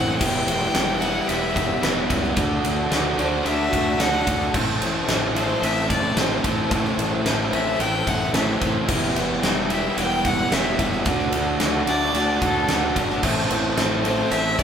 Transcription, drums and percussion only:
0.21 kick loud
0.21 crash loud
0.35 snare soft
0.48 ride medium
0.75 snare loud
0.75 ride loud
1.02 ride medium
1.29 ride loud
1.56 kick medium
1.56 ride medium
1.83 snare loud
1.83 ride loud
2.10 kick loud
2.10 ride medium
2.23 snare soft
2.37 kick loud
2.37 ride loud
2.65 ride medium
2.92 snare loud
2.92 ride loud
3.19 ride medium
3.46 ride medium
3.73 kick medium
3.73 ride medium
4.00 snare loud
4.00 ride loud
4.27 kick loud
4.27 ride medium
4.41 snare soft
4.54 kick loud
4.54 crash loud
4.82 ride medium
5.09 snare loud
5.09 ride loud
5.36 ride medium
5.63 ride loud
5.90 kick medium
5.90 ride medium
6.17 snare loud
6.17 ride loud
6.44 kick medium
6.44 ride medium
6.71 kick loud
6.71 ride loud
6.85 snare soft
6.99 ride medium
7.26 snare loud
7.26 ride loud
7.53 ride medium
7.80 ride loud
8.07 kick loud
8.07 ride medium
8.34 snare loud
8.34 ride loud
8.62 kick loud
8.62 ride medium
8.88 kick loud
8.88 crash loud
9.03 snare soft
9.16 ride medium
9.43 snare loud
9.43 ride loud
9.70 ride medium
9.98 ride loud
10.25 kick loud
10.25 ride medium
10.52 snare loud
10.52 ride loud
10.79 kick loud
10.79 ride medium
10.92 snare soft
11.06 kick loud
11.06 ride loud
11.19 snare soft
11.33 ride medium
11.60 snare loud
11.60 ride loud
11.87 ride medium
12.15 ride loud
12.42 kick medium
12.42 ride medium
12.69 snare loud
12.69 ride loud
12.96 kick loud
12.96 ride medium
13.10 snare soft
13.23 kick loud
13.23 crash loud
13.37 snare soft
13.51 ride medium
13.78 snare loud
13.78 ride loud
14.05 ride medium
14.32 ride loud
14.59 kick loud
14.59 ride medium

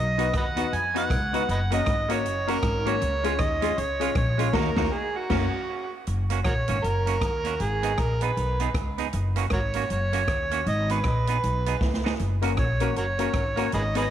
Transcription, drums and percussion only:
0.19 closed hi-hat medium
0.34 kick loud
0.34 cross-stick loud
0.34 closed hi-hat medium
0.57 closed hi-hat loud
0.73 closed hi-hat medium
0.96 closed hi-hat medium
1.10 kick loud
1.10 cross-stick loud
1.10 closed hi-hat medium
1.34 closed hi-hat medium
1.49 closed hi-hat medium
1.72 closed hi-hat loud
1.86 kick loud
1.86 cross-stick loud
1.86 closed hi-hat medium
2.10 closed hi-hat loud
2.26 closed hi-hat medium
2.48 closed hi-hat medium
2.63 kick loud
2.63 cross-stick loud
2.63 closed hi-hat medium
2.86 closed hi-hat medium
3.01 closed hi-hat medium
3.24 closed hi-hat loud
3.39 kick loud
3.39 cross-stick loud
3.39 closed hi-hat medium
3.62 closed hi-hat loud
3.78 closed hi-hat medium
4.01 closed hi-hat medium
4.15 kick loud
4.15 cross-stick loud
4.15 closed hi-hat medium
4.39 closed hi-hat medium
4.53 kick loud
4.53 snare loud
4.53 crash medium
4.76 kick loud
4.76 snare loud
5.30 kick loud
5.30 snare loud
5.30 crash medium
6.07 closed hi-hat medium
6.30 closed hi-hat loud
6.45 kick loud
6.45 cross-stick loud
6.45 closed hi-hat medium
6.68 closed hi-hat loud
6.84 closed hi-hat medium
7.07 closed hi-hat medium
7.21 kick loud
7.21 cross-stick loud
7.21 closed hi-hat medium
7.45 closed hi-hat medium
7.60 closed hi-hat medium
7.83 closed hi-hat loud
7.98 kick loud
7.98 cross-stick loud
7.98 closed hi-hat medium
8.21 closed hi-hat loud
8.37 closed hi-hat medium
8.60 closed hi-hat medium
8.74 kick loud
8.74 cross-stick loud
8.74 closed hi-hat medium
8.98 closed hi-hat medium
9.13 closed hi-hat medium
9.36 closed hi-hat medium
9.50 kick loud
9.50 cross-stick loud
9.50 closed hi-hat medium
9.74 closed hi-hat loud
9.90 closed hi-hat medium
10.13 closed hi-hat medium
10.28 kick loud
10.28 cross-stick loud
10.28 closed hi-hat medium
10.51 closed hi-hat medium
10.66 closed hi-hat medium
10.89 closed hi-hat loud
11.04 kick loud
11.04 cross-stick loud
11.04 closed hi-hat medium
11.27 closed hi-hat loud
11.43 closed hi-hat medium
11.66 closed hi-hat medium
11.81 kick loud
11.81 snare medium
11.94 snare medium
12.06 snare medium
12.19 closed hi-hat medium
12.42 closed hi-hat medium
12.57 kick loud
12.57 cross-stick loud
12.57 closed hi-hat medium
12.80 closed hi-hat loud
12.96 closed hi-hat medium
13.19 closed hi-hat medium
13.34 kick loud
13.34 cross-stick loud
13.34 closed hi-hat medium
13.57 closed hi-hat medium
13.72 closed hi-hat medium
13.95 closed hi-hat loud

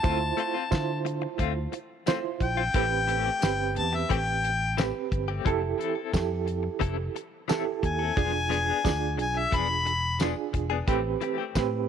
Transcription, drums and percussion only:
0.04 kick loud
0.04 closed hi-hat medium
0.38 closed hi-hat medium
0.72 kick medium
0.72 snare loud
0.72 closed hi-hat medium
0.72 tambourine medium
1.06 closed hi-hat medium
1.39 kick medium
1.39 closed hi-hat medium
1.73 closed hi-hat medium
2.07 snare loud
2.07 closed hi-hat medium
2.07 tambourine loud
2.40 kick medium
2.40 closed hi-hat medium
2.74 kick loud
2.74 closed hi-hat medium
3.08 closed hi-hat medium
3.42 snare loud
3.42 closed hi-hat medium
3.42 tambourine loud
3.76 closed hi-hat medium
4.10 kick medium
4.10 closed hi-hat medium
4.44 closed hi-hat medium
4.78 snare loud
4.78 closed hi-hat medium
4.78 tambourine loud
5.12 kick medium
5.12 closed hi-hat medium
5.46 kick loud
5.46 closed hi-hat medium
5.81 closed hi-hat medium
6.13 kick medium
6.13 snare loud
6.13 closed hi-hat medium
6.13 tambourine loud
6.48 closed hi-hat medium
6.81 kick medium
6.81 closed hi-hat medium
7.16 closed hi-hat medium
7.49 snare loud
7.49 closed hi-hat medium
7.49 tambourine loud
7.83 kick medium
7.83 closed hi-hat medium
8.17 kick loud
8.17 closed hi-hat medium
8.52 closed hi-hat medium
8.85 kick medium
8.85 snare medium
8.85 closed hi-hat medium
8.85 tambourine loud
9.19 closed hi-hat medium
9.52 kick medium
9.52 closed hi-hat medium
9.87 closed hi-hat medium
10.20 snare loud
10.20 closed hi-hat medium
10.20 tambourine loud
10.54 kick medium
10.54 closed hi-hat medium
10.88 kick loud
10.88 closed hi-hat medium
11.21 closed hi-hat medium
11.55 kick medium
11.55 snare loud
11.55 closed hi-hat medium
11.55 tambourine loud

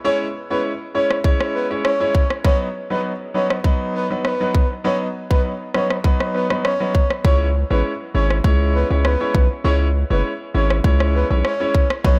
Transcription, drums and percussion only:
1.11 cross-stick medium
1.24 kick medium
1.40 cross-stick medium
1.85 cross-stick loud
2.15 kick medium
2.30 cross-stick medium
2.45 kick loud
3.50 cross-stick medium
3.64 kick medium
4.25 cross-stick medium
4.55 kick medium
5.31 kick medium
5.74 cross-stick medium
5.90 cross-stick medium
6.04 kick medium
6.20 cross-stick medium
6.50 cross-stick medium
6.65 cross-stick loud
6.95 kick medium
7.10 cross-stick medium
7.25 kick loud
8.30 cross-stick medium
8.44 kick medium
9.05 cross-stick loud
9.35 kick medium
10.70 cross-stick medium
10.84 kick medium
11.00 cross-stick medium
11.45 cross-stick medium
11.75 kick medium
11.90 cross-stick medium
12.05 kick loud

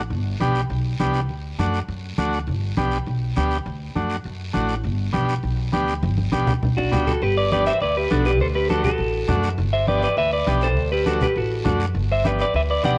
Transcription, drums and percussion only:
0.11 high conga soft
0.11 long guiro medium
0.40 high conga medium
0.40 short guiro medium
0.55 short guiro medium
0.70 high conga soft
0.70 long guiro medium
0.99 high conga medium
0.99 short guiro medium
1.14 short guiro medium
1.29 high conga soft
1.29 long guiro medium
1.59 high conga medium
1.59 short guiro medium
1.74 short guiro medium
1.89 high conga soft
1.89 long guiro medium
2.18 high conga medium
2.18 short guiro medium
2.33 short guiro medium
2.47 high conga soft
2.47 long guiro medium
2.77 high conga medium
2.77 short guiro medium
2.92 short guiro medium
3.06 high conga soft
3.06 long guiro medium
3.36 high conga medium
3.36 short guiro medium
3.51 short guiro medium
3.66 high conga soft
3.66 long guiro medium
3.96 high conga medium
3.96 short guiro medium
4.10 short guiro medium
4.24 high conga soft
4.24 long guiro medium
4.54 high conga medium
4.54 short guiro medium
4.69 short guiro medium
4.84 high conga soft
4.84 long guiro medium
5.14 high conga medium
5.14 short guiro medium
5.29 short guiro medium
5.43 high conga soft
5.43 long guiro medium
5.73 high conga medium
5.73 short guiro medium
5.88 short guiro medium
6.03 high conga medium
6.03 long guiro medium
6.18 high conga medium
6.32 high conga medium
6.32 short guiro medium
6.48 low conga medium
6.48 short guiro medium
6.63 low conga medium
6.63 long guiro medium
6.78 low conga medium
6.92 low conga medium
6.92 short guiro medium
7.07 low conga medium
7.07 short guiro medium
7.22 high conga soft
7.22 long guiro medium
7.51 high conga medium
7.51 short guiro medium
7.66 short guiro medium
7.80 high conga soft
7.80 long guiro medium
8.10 high conga medium
8.10 short guiro medium
8.25 short guiro medium
8.40 high conga soft
8.40 long guiro medium
8.69 high conga medium
8.69 short guiro medium
8.84 low conga medium
8.84 short guiro medium
8.98 high conga soft
8.98 long guiro medium
9.28 high conga medium
9.28 low conga medium
9.28 short guiro medium
9.43 short guiro medium
9.58 high conga soft
9.58 long guiro medium
9.87 high conga medium
9.87 short guiro medium
10.02 short guiro medium
10.17 high conga soft
10.17 long guiro medium
10.47 high conga medium
10.47 short guiro medium
10.61 short guiro medium
10.77 high conga soft
10.77 long guiro medium
11.06 high conga medium
11.06 short guiro medium
11.21 low conga medium
11.21 short guiro medium
11.36 high conga soft
11.36 long guiro medium
11.65 high conga medium
11.65 low conga medium
11.65 short guiro medium
11.80 short guiro medium
11.95 high conga soft
11.95 long guiro medium
12.24 high conga medium
12.24 short guiro medium
12.39 short guiro medium
12.54 high conga soft
12.54 long guiro medium
12.83 high conga medium
12.83 short guiro medium

